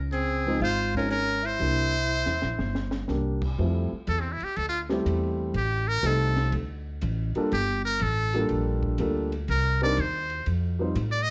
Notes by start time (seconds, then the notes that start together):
Already playing: C#2
0.12 C4 G#4, closed hi-hat
0.46 F3 G#3 C4 D#4
0.60 G#1 F4 C5, open hi-hat
0.95 F3 G#3 C4 C#4 D#4 A#4, kick
1.10 C#4 A#4, closed hi-hat
1.43 E4 C5
1.60 C2 G3 A#3 D4 E4, open hi-hat
2.26 E2, snare
2.42 A#1, snare
2.59 G1, snare
2.75 snare
2.91 snare
3.08 C2 G3 A#3 D4 G4, snare
3.42 kick, crash
3.58 F2 G3 A3 C4 E4 F4
3.92 muted upright bass stroke
4.07 E2 A4, hi-hat pedal, ride
4.21 C4
4.32 E4
4.40 G4, muted upright bass stroke, ride
4.57 D2 A4, ride
4.69 F4
4.89 G3 A3 C4 E4 G4, snare
5.05 E2, hi-hat pedal, ride
5.54 A1 G4, ride
5.88 A#4
6.03 C2 G3 A3 C4 D#4 A4, hi-hat pedal, ride
6.36 snare, ride
6.52 D2, ride
7.01 A1, hi-hat pedal, ride
7.35 G3 A#3 D4 F4 A4, muted upright bass stroke, ride
7.52 G1 G4, ride
7.85 A#4
8.00 A1 A4, hi-hat pedal, ride
8.33 G3 A#3 D4 F4 A4, ride
8.49 A#1, ride
8.83 kick
8.98 D2 G3 A#3 D4 F4 A4, hi-hat pedal, ride
9.32 ride
9.48 C2 A#4, ride
9.81 G3 C4 D4 D#4 A#4 D5
9.97 D#2 C5, hi-hat pedal, ride
10.29 ride
10.46 F2, ride
10.79 G3 C4 D#4 F4 C5
10.95 A2, hi-hat pedal, ride
11.11 D5
11.23 D#5